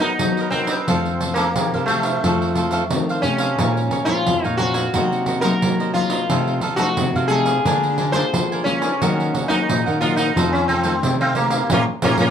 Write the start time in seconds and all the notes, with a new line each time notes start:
Already playing: F#3
0.00 B3 D#4 A#4 B4 D#5, pandeiro
0.19 F#3, pandeiro
0.37 A#4 B4 D#5, pandeiro
0.50 B3 C4 D#4 A#4, pandeiro
0.67 A#4 B4 D#5, pandeiro
0.87 F2 F3 A3 C4 F4 A4 C5 F5, pandeiro
1.05 pandeiro
1.21 F4 A4 C5 F5, pandeiro
1.34 F3 A#3 C4 F4 A4 C5 F5, pandeiro
1.56 C3, pandeiro
1.74 C3 A4 C5 F5, pandeiro
1.86 F3 A3 C4 F4 A4 C5, pandeiro
1.90 F5
2.03 A4 C5 F5, pandeiro
2.24 F2 F3 A3 C4 F4 A4 C5 F5, pandeiro
2.42 pandeiro
2.55 F3 A3 C4 F4 A4 C5 F5, pandeiro
2.71 F3 A3 C4 F4 A4 C5 F5, pandeiro
2.90 D#3 F3 A3 C4, pandeiro
3.09 A4 C5 F5, pandeiro
3.22 C3 F3 A3 C4 C#4, pandeiro
3.38 A4 C5 F5, pandeiro
3.58 A#2 F3 G#3 C#4 A#4 C#5 F5 G#5, pandeiro
3.77 pandeiro
3.91 A#4 C#5 F5 G#5, pandeiro
4.05 F3 G#3 C#4 F4 A#4 C#5 F5 G#5, pandeiro
4.26 F2 F3, pandeiro
4.44 A#2 C#5 F5 G#5, pandeiro
4.57 F3 G#3 C#4 F#4 A#4 C#5 F5 G#5, pandeiro
4.74 C#5 F5 G#5, pandeiro
4.94 C3 F#3 A#3 D#4 F#4 A#4 C5 D#5, pandeiro
5.12 pandeiro
5.26 F#4 A#4 C5 D#5, pandeiro
5.41 F#3 A#3 D#4 F#4 A#4 C5 D#5, pandeiro
5.62 C3 F#3, pandeiro
5.80 A#4 C5 D#5, pandeiro
5.94 F#3 A#3 D#4 F4, pandeiro
6.10 A#4 C5 D#5, pandeiro
6.30 C3 F3 A3 D#4 A4 C5 F5, pandeiro
6.47 pandeiro
6.61 D#4 A4 C5 F5, pandeiro
6.76 F3 A3 D#4 F#4 A4 C5 F5, pandeiro
6.97 C3, pandeiro
7.15 C3 A4 C5 F5, pandeiro
7.28 F3 A3 D#4 G#4 A4 C5, pandeiro
7.32 F5
7.46 A4 C5 F5, pandeiro
7.65 D3 G#3 A#3 D4 F4 A#4 D5 G#5, pandeiro
7.83 pandeiro
7.98 D4 A#4 D5 G#5, pandeiro
8.12 G#3 A#3 D4 F4 A#4 C5 D5 G#5, pandeiro
8.33 D3 F3, pandeiro
8.52 A#4 D5 G#5, pandeiro
8.64 G#3 A#3 C#4 F4, pandeiro
8.82 A#4 D5 G#5, pandeiro
9.01 D#3 F#3 A#3 D#4 F#4 A#4 D#5 F#5, pandeiro
9.20 pandeiro
9.34 F#4 A#4 D#5 F#5, pandeiro
9.48 F#3 A#3 D#4 F#4 A#4 D#5 F#5, pandeiro
9.68 A#2, pandeiro
9.86 D#3 A#4 D#5 F#5, pandeiro
10.01 F#3 A#3 D#4 F4 F#4 A#4 D#5 F#5, pandeiro
10.16 D#4 A#4 D#5 F#5, pandeiro
10.36 F2 D#3 F3 A3 C4 D#4 A4 C5 F5, pandeiro
10.53 C#4, pandeiro
10.68 C4 D#4 A4 C5 F5, pandeiro
10.83 D#3 A3 C4 D#4 A4 C5 F5, pandeiro
11.03 C3, pandeiro
11.21 C4 A4 C5 F5, pandeiro
11.35 D#3 A3 A#3 C4, pandeiro
11.50 A4 C5 F5, pandeiro
11.70 A#2 F3 A#3 C#4 F4 A#4 C#5, pandeiro
12.02 A#2 F3 A#3 C#4 F4 A#4 C#5, pandeiro
12.18 A#2 F3 A#3 C#4 F4 A#4 C#5, pandeiro